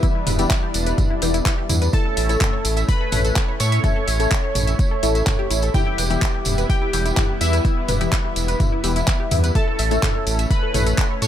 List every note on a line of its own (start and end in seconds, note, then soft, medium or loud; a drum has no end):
0.00 0.36 E3 medium
0.00 1.90 G3 medium
0.00 1.90 B3 medium
0.00 0.36 B3 medium
0.00 1.91 D4 medium
0.00 1.84 E4 loud
0.00 0.11 E4 medium
0.00 0.36 E4 medium
0.00 1.84 E5 loud
0.00 kick loud
0.00 closed hi-hat medium
0.00 tambourine soft
0.15 0.26 E4 medium
0.27 0.46 E1 loud
0.27 0.32 B4 medium
0.27 mid tom medium
0.27 open hi-hat loud
0.27 tambourine medium
0.39 1.19 E3 medium
0.39 1.19 B3 medium
0.39 1.19 E4 loud
0.39 0.47 G4 medium
0.39 closed hi-hat medium
0.39 tambourine medium
0.50 0.55 E4 medium
0.50 kick loud
0.50 clap loud
0.50 closed hi-hat medium
0.50 tambourine soft
0.63 0.68 G4 medium
0.74 0.94 E1 loud
0.74 open hi-hat loud
0.74 tambourine medium
0.86 0.94 B4 medium
0.86 closed hi-hat medium
0.86 tambourine medium
0.98 kick loud
0.98 closed hi-hat medium
0.98 mid tom medium
0.98 tambourine soft
1.10 1.18 E4 medium
1.22 1.41 E1 loud
1.22 1.91 E3 medium
1.22 1.91 B3 medium
1.22 1.91 E4 loud
1.22 1.30 G4 medium
1.22 open hi-hat loud
1.22 tambourine medium
1.34 1.39 E4 medium
1.34 closed hi-hat medium
1.34 tambourine medium
1.46 1.54 E4 medium
1.46 kick loud
1.46 clap loud
1.46 closed hi-hat medium
1.46 tambourine soft
1.58 1.63 G4 medium
1.69 1.89 E2 loud
1.69 1.78 E4 medium
1.69 mid tom medium
1.69 open hi-hat loud
1.69 tambourine loud
1.82 1.90 B4 medium
1.82 closed hi-hat medium
1.82 tambourine medium
1.93 5.71 A3 medium
1.93 2.27 A3 medium
1.93 5.71 C#4 medium
1.93 11.27 E4 medium
1.93 2.27 E4 medium
1.93 2.02 A4 medium
1.93 2.27 A4 medium
1.93 2.79 A4 loud
1.93 2.79 A5 loud
1.93 kick loud
1.93 closed hi-hat medium
1.93 tambourine soft
2.05 2.17 A4 medium
2.17 2.37 A1 loud
2.17 2.22 E5 medium
2.17 open hi-hat loud
2.17 tambourine medium
2.29 3.10 A3 medium
2.29 3.10 E4 medium
2.29 3.10 A4 loud
2.29 2.37 C#5 medium
2.29 closed hi-hat medium
2.29 tambourine medium
2.41 2.46 A4 medium
2.41 kick loud
2.41 clap loud
2.41 closed hi-hat medium
2.41 mid tom medium
2.41 tambourine soft
2.53 2.58 C#5 medium
2.65 2.84 A1 loud
2.65 open hi-hat loud
2.65 tambourine loud
2.77 2.85 E5 medium
2.77 closed hi-hat medium
2.77 tambourine medium
2.88 3.51 B4 loud
2.88 3.51 B5 loud
2.88 kick loud
2.88 closed hi-hat medium
2.88 tambourine soft
3.01 3.09 A4 medium
3.12 3.32 A1 loud
3.12 3.81 A3 loud
3.12 3.81 E4 medium
3.12 3.81 A4 loud
3.12 3.21 C#5 medium
3.12 mid tom medium
3.12 open hi-hat loud
3.12 tambourine loud
3.25 3.29 A4 medium
3.25 closed hi-hat medium
3.25 tambourine medium
3.36 3.45 A4 medium
3.36 kick loud
3.36 clap loud
3.36 closed hi-hat medium
3.36 tambourine soft
3.48 3.53 C#5 medium
3.60 3.79 A2 loud
3.60 3.68 A4 medium
3.60 5.65 C#5 loud
3.60 5.65 C#6 loud
3.60 open hi-hat loud
3.60 tambourine loud
3.72 3.80 E5 medium
3.72 closed hi-hat medium
3.72 tambourine medium
3.84 4.17 A3 medium
3.84 4.17 E4 medium
3.84 3.92 A4 medium
3.84 4.17 A4 medium
3.84 kick loud
3.84 closed hi-hat medium
3.84 mid tom medium
3.84 tambourine soft
3.96 4.07 A4 medium
4.08 4.27 A1 loud
4.08 4.13 E5 medium
4.08 open hi-hat loud
4.08 tambourine medium
4.20 5.00 A3 loud
4.20 5.00 E4 medium
4.20 5.00 A4 loud
4.20 4.28 C#5 medium
4.20 closed hi-hat medium
4.20 tambourine medium
4.31 4.36 A4 medium
4.31 kick loud
4.31 clap loud
4.31 closed hi-hat medium
4.31 tambourine soft
4.44 4.48 C#5 medium
4.55 4.75 A1 loud
4.55 mid tom medium
4.55 open hi-hat loud
4.55 tambourine loud
4.67 4.75 E5 medium
4.67 closed hi-hat medium
4.67 tambourine medium
4.79 kick loud
4.79 closed hi-hat medium
4.79 tambourine soft
4.91 4.99 A4 medium
5.03 5.22 A1 loud
5.03 5.72 A3 medium
5.03 5.72 E4 medium
5.03 5.72 A4 loud
5.03 5.11 E5 medium
5.03 open hi-hat loud
5.03 tambourine medium
5.15 5.23 E5 medium
5.15 closed hi-hat medium
5.15 tambourine medium
5.27 5.38 A4 medium
5.27 kick loud
5.27 clap loud
5.27 closed hi-hat medium
5.27 mid tom medium
5.27 tambourine soft
5.39 5.47 G4 loud
5.51 5.70 A1 medium
5.51 5.59 E4 medium
5.51 open hi-hat loud
5.51 tambourine loud
5.62 5.74 A4 medium
5.62 closed hi-hat medium
5.62 tambourine medium
5.74 6.07 E3 medium
5.74 9.52 G3 medium
5.74 6.07 B3 medium
5.74 9.52 B3 medium
5.74 5.83 E4 medium
5.74 6.07 E4 medium
5.74 6.60 G4 loud
5.74 6.60 G5 loud
5.74 kick loud
5.74 closed hi-hat medium
5.74 mid tom medium
5.74 tambourine soft
5.87 5.98 E4 medium
5.98 6.18 E1 loud
5.98 6.03 B4 medium
5.98 open hi-hat loud
5.98 tambourine loud
6.10 6.91 E3 loud
6.10 6.91 B3 medium
6.10 6.91 E4 loud
6.10 6.18 G4 medium
6.10 closed hi-hat medium
6.10 tambourine medium
6.22 6.27 E4 medium
6.22 kick loud
6.22 clap loud
6.22 closed hi-hat medium
6.22 tambourine soft
6.34 6.39 G4 medium
6.45 6.65 E1 loud
6.45 mid tom loud
6.45 open hi-hat loud
6.45 tambourine loud
6.58 6.66 B4 medium
6.58 closed hi-hat medium
6.58 tambourine medium
6.69 7.32 G4 loud
6.69 7.32 G5 loud
6.69 kick loud
6.69 closed hi-hat medium
6.69 tambourine soft
6.82 6.90 E4 medium
6.93 7.13 E1 loud
6.93 7.62 E3 medium
6.93 7.62 B3 medium
6.93 7.62 E4 loud
6.93 7.02 G4 medium
6.93 open hi-hat loud
6.93 tambourine loud
7.05 7.10 E4 medium
7.05 closed hi-hat medium
7.05 tambourine medium
7.17 7.25 E4 medium
7.17 kick loud
7.17 clap loud
7.17 closed hi-hat medium
7.17 mid tom loud
7.17 tambourine soft
7.29 7.34 G4 medium
7.41 7.60 E2 loud
7.41 7.49 E4 medium
7.41 9.46 E4 loud
7.41 9.46 E5 loud
7.41 open hi-hat loud
7.41 tambourine medium
7.53 7.61 B4 medium
7.53 closed hi-hat medium
7.53 tambourine medium
7.65 7.98 E3 medium
7.65 7.98 B3 medium
7.65 7.73 E4 medium
7.65 7.98 E4 medium
7.65 kick loud
7.65 closed hi-hat medium
7.65 tambourine soft
7.77 7.88 E4 medium
7.88 8.08 E1 loud
7.88 7.94 B4 medium
7.88 mid tom loud
7.88 open hi-hat loud
7.88 tambourine medium
8.01 8.81 E3 loud
8.01 8.81 B3 medium
8.01 8.81 E4 loud
8.01 8.09 G4 medium
8.01 closed hi-hat medium
8.01 tambourine medium
8.12 8.17 E4 medium
8.12 kick loud
8.12 clap loud
8.12 closed hi-hat medium
8.12 tambourine soft
8.25 8.29 G4 medium
8.36 8.56 E1 loud
8.36 open hi-hat loud
8.36 tambourine medium
8.48 8.56 B4 medium
8.48 closed hi-hat medium
8.48 tambourine soft
8.60 kick loud
8.60 closed hi-hat medium
8.60 mid tom loud
8.60 tambourine soft
8.72 8.80 E4 medium
8.84 9.03 E1 loud
8.84 9.53 E3 medium
8.84 9.53 B3 medium
8.84 9.53 E4 loud
8.84 8.92 G4 medium
8.84 open hi-hat loud
8.84 tambourine medium
8.96 9.01 E4 medium
8.96 closed hi-hat medium
8.96 tambourine soft
9.08 9.16 E4 medium
9.08 kick loud
9.08 clap loud
9.08 closed hi-hat medium
9.08 tambourine soft
9.20 9.25 G4 medium
9.31 9.51 E2 loud
9.31 9.40 E4 medium
9.31 mid tom loud
9.31 open hi-hat loud
9.31 tambourine medium
9.44 9.52 B4 medium
9.44 closed hi-hat medium
9.44 tambourine medium
9.55 11.27 A3 medium
9.55 9.88 A3 medium
9.55 11.27 C#4 medium
9.55 9.88 E4 medium
9.55 10.41 A4 loud
9.55 9.64 A4 medium
9.55 9.88 A4 medium
9.55 10.41 A5 loud
9.55 kick loud
9.55 closed hi-hat medium
9.55 tambourine soft
9.68 9.79 A4 medium
9.79 9.98 A1 loud
9.79 9.84 E5 medium
9.79 open hi-hat loud
9.79 tambourine medium
9.91 10.72 A3 loud
9.91 10.72 E4 medium
9.91 10.72 A4 loud
9.91 9.99 C#5 medium
9.91 closed hi-hat medium
9.91 tambourine medium
10.03 10.08 A4 medium
10.03 kick loud
10.03 clap loud
10.03 closed hi-hat medium
10.03 mid tom loud
10.03 tambourine soft
10.15 10.20 C#5 medium
10.27 10.46 A1 loud
10.27 open hi-hat loud
10.27 tambourine medium
10.39 10.47 E5 medium
10.39 closed hi-hat medium
10.39 tambourine soft
10.51 11.13 B4 loud
10.51 11.13 B5 loud
10.51 kick loud
10.51 closed hi-hat medium
10.51 tambourine soft
10.63 10.71 A4 medium
10.74 10.94 A1 loud
10.74 11.27 A3 medium
10.74 11.27 E4 medium
10.74 11.27 A4 loud
10.74 10.83 C#5 medium
10.74 mid tom loud
10.74 open hi-hat loud
10.74 tambourine medium
10.86 10.91 A4 medium
10.86 closed hi-hat medium
10.86 tambourine medium
10.98 11.07 A4 medium
10.98 kick loud
10.98 clap loud
10.98 closed hi-hat medium
10.98 tambourine soft
11.10 11.15 C#5 medium
11.22 11.27 A2 loud
11.22 11.27 A4 medium
11.22 11.27 C#5 loud
11.22 11.27 C#6 medium
11.22 open hi-hat loud
11.22 tambourine medium